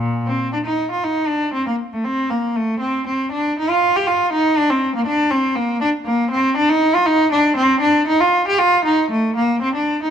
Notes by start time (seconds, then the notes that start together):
Already playing: A#2
0.27 C4
0.53 D4
0.66 D#4
0.91 F4
1.04 D#4
1.27 D4
1.54 C4
1.67 A#3
1.93 A3
2.05 C4
2.30 A#3
2.56 A3
2.80 C4
3.07 C4
3.32 D4
3.59 D#4
3.70 F4
3.96 G4
4.07 F4
4.33 D#4
4.58 D4
4.70 C4
4.95 A#3
5.07 D4
5.31 C4
5.56 A#3
5.81 D4
6.06 A#3
6.31 C4
6.57 D4
6.69 D#4
6.95 F4
7.06 D#4
7.32 D4
7.57 C4
7.81 D4
8.07 D#4
8.21 F4
8.48 G4
8.59 F4
8.85 D#4
9.11 A3
9.36 A#3
9.62 C4
9.75 D4
10.03 D#4